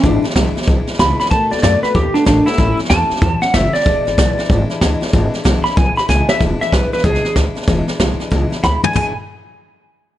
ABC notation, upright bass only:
X:1
M:4/4
L:1/8
Q:"Swing" 1/4=188
K:Emix
V:1 name="Upright bass" clef=bass
G,,, z B,,, z B,,, z C,, z | B,,, ^D,, F,, z D,, z A,,, z | A,,, z E,, z E,, z F,,, z | E,,, G,,, B,,, z G,,, z D,, z |
G,,, z B,,, z B,,, z C,, z | E,,, z B,,, z C,, z D,, z | E,,, z B,,, z C,, z D,, z | E,,, z6 z |]